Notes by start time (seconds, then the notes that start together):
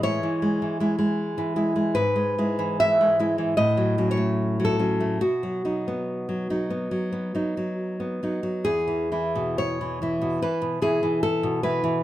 Already playing: A2 E3
0.03 G#3 E4 C#5
0.23 E3
0.42 G#3
0.62 E3
0.80 G#3 E4
0.99 G#3
1.38 E3
1.56 G#3 E4
1.76 G#3
1.95 G#2 B4
2.16 G#3
2.38 G#3 E4
2.59 E3
2.80 E5
3.01 G#3
3.19 G#3 E4
3.38 E3
3.57 A2 D#5
3.77 F#3
3.98 F#3 C#4
4.11 C#5
4.17 A3
4.60 F#3
4.65 A4
4.79 F#3 C#4
5.00 A3
5.21 B2 F#4
5.43 F#3
5.65 F#3 D#4
5.88 B3
6.29 F#3
6.50 F#3 D#4
6.70 B3
6.91 F#3
7.12 B3
7.35 F#3 D#4
7.57 F#3
8.00 B3
8.23 F#3 D#4
8.43 F#3
8.65 E2 G#4
8.87 E3
9.12 E3 E4
9.35 B2
9.58 C#5
9.81 E3
10.02 E3 E4
10.22 B2
10.42 E3 B4
10.62 B2
10.82 E3 E4 G#4
11.03 E3
11.23 A4
11.43 B2
11.63 E3 E4 B4
11.84 E3